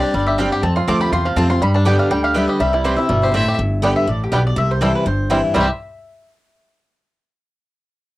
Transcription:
Already playing: steel-string acoustic guitar C3 G3 C4 D4 G4, five-string banjo G4, fiddle D5
0.02 five-string banjo D4
0.14 upright bass G1, steel-string acoustic guitar G2, five-string banjo G3
0.26 five-string banjo G4, mandolin E5
0.38 steel-string acoustic guitar G3 C4 D4 G4, mandolin C4 G4 D5 F5 G5, five-string banjo D4
0.52 five-string banjo G4, mandolin G5
0.62 upright bass F2, steel-string acoustic guitar F2, five-string banjo C4, mandolin A5
0.76 five-string banjo F4, mandolin C6
0.87 upright bass D2, steel-string acoustic guitar F3 A3 C4 F4, five-string banjo A3, mandolin C4 F4 C5 A5 D6
1.01 five-string banjo G4, mandolin B5
1.12 upright bass E2, steel-string acoustic guitar C3, five-string banjo F4, mandolin C6
1.25 five-string banjo F3, mandolin F5
1.36 upright bass F2, steel-string acoustic guitar F3 A3 C4 F4, mandolin C4 F4 C5 A5, five-string banjo C4
1.50 steel-string acoustic guitar C4 F4, five-string banjo F4, mandolin C6
1.61 upright bass G2, steel-string acoustic guitar G2, five-string banjo G3, mandolin B5
1.74 five-string banjo D4, mandolin A5
1.85 steel-string acoustic guitar D3 G3 B3 G4, mandolin B3 G4 D5 G5, five-string banjo G4
1.99 five-string banjo D4, mandolin F5
2.11 upright bass D2, steel-string acoustic guitar D3, five-string banjo G3, mandolin G5
2.24 five-string banjo G4, mandolin F5
2.34 steel-string acoustic guitar D3 G3 B3 G4, mandolin B3 G4 D5 E5 G5, five-string banjo B3
2.48 five-string banjo G4, mandolin D#5
2.59 upright bass C2, steel-string acoustic guitar C3, five-string banjo G3, mandolin E5
2.73 five-string banjo E4, mandolin D5
2.84 steel-string acoustic guitar E3 G3 C4 E4, mandolin C4 E4 B4 C5 G5, five-string banjo G4
2.96 steel-string acoustic guitar C4 E4, five-string banjo E4, mandolin E5
3.09 upright bass G1, steel-string acoustic guitar B2, five-string banjo G3
3.22 five-string banjo G4, fiddle C5
3.33 steel-string acoustic guitar A2, mandolin C4 E4 C5 G5, five-string banjo C4, fiddle E5
3.48 five-string banjo G4
3.59 upright bass G1, steel-string acoustic guitar G2
3.82 steel-string acoustic guitar D3 G3 B3 G4, five-string banjo G3 B3 D4, mandolin B3 G4 D5 G5
3.96 mandolin E5
4.07 upright bass A1, steel-string acoustic guitar A2, mandolin D5
4.24 mandolin G4
4.32 upright bass B1, steel-string acoustic guitar B2, five-string banjo G3 B3 D4, mandolin B3 G4 B4 D5 G5
4.47 mandolin D5
4.56 upright bass C2, steel-string acoustic guitar C3, mandolin E5
4.71 mandolin C5
4.81 steel-string acoustic guitar E3 G3 C4 E4, five-string banjo G3 C4 E4, mandolin C4 E4 A4 C5 G5
4.95 mandolin B4
5.06 upright bass G1, steel-string acoustic guitar G2, mandolin C5
5.30 steel-string acoustic guitar E3 G3 C4 E4, five-string banjo G3 C4 E4, mandolin C4 E4 C5 G5
5.54 upright bass C2, steel-string acoustic guitar C3 E3 G3 C4 E4, five-string banjo G3 C4, mandolin C4 E4 C5 G5, fiddle E5
5.58 five-string banjo E4 G4

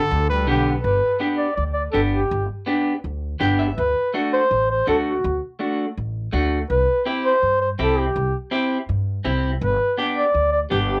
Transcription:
Already playing: duduk D3, trumpet A4
0.11 upright bass D2
0.29 duduk G3, trumpet B4
0.47 upright bass B1, duduk D3, clean electric guitar B3 D4 G4, trumpet G4
0.83 upright bass G1, duduk B4
1.20 clean electric guitar B3 D4 G4
1.37 duduk D5
1.56 upright bass D2, duduk D5
1.74 duduk D5
1.92 upright bass G1, clean electric guitar B3 D4 G4, duduk A4
2.12 duduk G4
2.31 upright bass G1
2.66 clean electric guitar B3 D4 G4
3.04 upright bass D2
3.40 upright bass G1, clean electric guitar B3 D4 G4 G5
3.59 clean electric guitar E5
3.78 upright bass D2, duduk B4
4.14 clean electric guitar A3 D4 F#4
4.33 duduk C5
4.51 upright bass A1
4.70 duduk C5
4.87 upright bass D2, clean electric guitar A3 D4 F#4, duduk A4
5.07 duduk F#4
5.24 upright bass D2
5.59 clean electric guitar A3 D4 F#4
5.98 upright bass A1
6.33 upright bass D2, clean electric guitar A3 D4 F#4
6.70 upright bass C2, duduk B4
7.06 clean electric guitar C4 E4 G4
7.25 duduk C5
7.43 upright bass G2
7.61 duduk C5
7.79 upright bass C2, clean electric guitar C4 E4 G4, duduk A4
7.99 duduk G4
8.16 upright bass C2
8.51 clean electric guitar C4 E4 G4
8.89 upright bass G2
9.25 upright bass C2, clean electric guitar C4 E4 G4
9.61 upright bass G1, duduk B4
9.98 clean electric guitar B3 D4 G4
10.15 duduk D5
10.34 upright bass D2
10.52 duduk D5
10.70 upright bass G1, clean electric guitar B3 D4 G4, duduk G4
10.89 duduk G4

